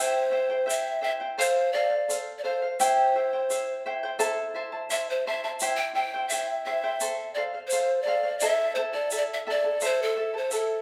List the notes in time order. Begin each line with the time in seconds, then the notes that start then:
Already playing: E4 G4 C5 E5 G5
0.00 C5
0.31 E4 C5 E5 G5
0.50 E4 C5 G5
0.66 E4 C5 E5 G5
0.70 E5, shaker
1.01 E4 C5 E5 G5
1.20 E4 C5 G5
1.38 A4 C5 F5, shaker
1.73 A4 C5 D5 F5
1.90 C5 F5
2.08 A4 C5 F5, shaker
2.38 D5
2.44 A4 C5 F5
2.62 C5 F5
2.80 E4 G4 C5 E5 G5, shaker
3.15 E4 C5 E5 G5
3.33 E4 C5 G5
3.50 E4 C5 E5 G5, shaker
3.86 E4 C5 E5 G5
4.03 E4 C5 G5
4.19 E4 A4 C5 E5 A5, shaker
4.54 E4 C5 E5 A5
4.72 E4 C5 A5
4.90 E4 C5 E5 A5, shaker
5.10 C5
5.27 E4 C5 E5 A5
5.44 E4 C5 E5 A5
5.60 E4 G4 C5 E5 G5, shaker
5.77 G5
5.95 E4 C5 E5 G5
6.14 E4 C5 G5
6.28 E4 C5 E5, shaker
6.33 G5
6.65 E4 C5 E5 G5
6.83 E4 C5 G5
7.00 A4 C5, shaker
7.34 A4 C5 D5 F5
7.53 C5 F5
7.67 C5, shaker
7.72 A4 C5 F5
8.02 A4 D5
8.07 C5 F5
8.23 C5 F5
8.39 E4 A4 C5 E5 A5, shaker
8.75 E4 A4 C5 E5 A5
8.93 E4 A4 D5 A5
9.11 E4 A4 E5 A5, shaker
9.17 D5
9.33 E5
9.47 E4 A4 D5 E5 A5
9.64 E4 A4 A5
9.81 E4 A4 C5 E5 A5, shaker
10.02 A4
10.16 E4 A4 E5 A5
10.34 E4 A4 C5 A5
10.51 E4 A4 E5 A5, shaker